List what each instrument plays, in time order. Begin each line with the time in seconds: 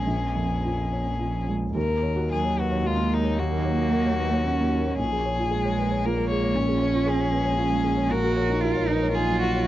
Already playing: double bass A#1, felt piano G#3, cello C#4, violin G#4
0.07 felt piano A#1
0.36 felt piano F2
0.64 felt piano F4
0.92 felt piano C#5
1.19 felt piano F4
1.48 felt piano G#3
1.75 felt piano D#2, double bass D#2, ambient pad F#3 D#4 C#5, violin A#4
1.88 felt piano A#4
2.02 felt piano C#5
2.16 felt piano F#4
2.29 cello F#3, violin G#4, felt piano A#4
2.45 felt piano C#5
2.59 violin F#4, felt piano B4
2.71 felt piano C#5
2.84 cello G#3, violin F4, felt piano F#4
2.97 felt piano A#3
3.11 violin D#4, felt piano A#4
3.24 felt piano C#5
3.36 felt piano D#2, cello A#3, violin F#4
3.51 felt piano A#4
3.65 felt piano C#5
3.78 felt piano F#4
3.93 felt piano A#4
4.06 felt piano C#5
4.20 felt piano B4
4.33 felt piano C#5
4.46 cello C#4, felt piano F#4
4.61 felt piano A#3
4.72 felt piano A#4
4.87 felt piano C#5
4.98 double bass A#1, felt piano A#2, ambient pad G#3 F4, violin G#4
5.12 felt piano G#4
5.25 felt piano C#5
5.38 felt piano F4
5.51 cello G#3, felt piano G#4
5.65 felt piano C#5
5.79 felt piano B4
5.91 felt piano C#5
6.05 cello A#3, felt piano F4, violin A#4
6.17 felt piano G#3
6.30 felt piano G#4, violin C#5
6.43 felt piano C#5
6.55 felt piano A#2, cello C#4
6.69 felt piano G#4
6.82 felt piano C#5
6.94 felt piano F4
7.06 felt piano G#4, violin G#4
7.19 felt piano C#5
7.32 felt piano B4
7.45 felt piano C#5
7.57 cello C#4, felt piano F4
7.70 felt piano G#3
7.84 felt piano G#4
7.97 felt piano C#5
8.10 felt piano A#2, ambient pad F#3 D#4 C#5, cello F#4, violin A#4
8.24 felt piano F#4
8.37 violin A#4, felt piano C#5
8.49 felt piano D#4
8.61 cello F4, felt piano F#4
8.76 felt piano C#5
8.88 cello D#4, felt piano B4
9.02 felt piano C#5
9.13 cello F4, violin G#4
9.17 felt piano D#4
9.30 felt piano F#3
9.40 violin F#4, felt piano F#4
9.56 felt piano C#5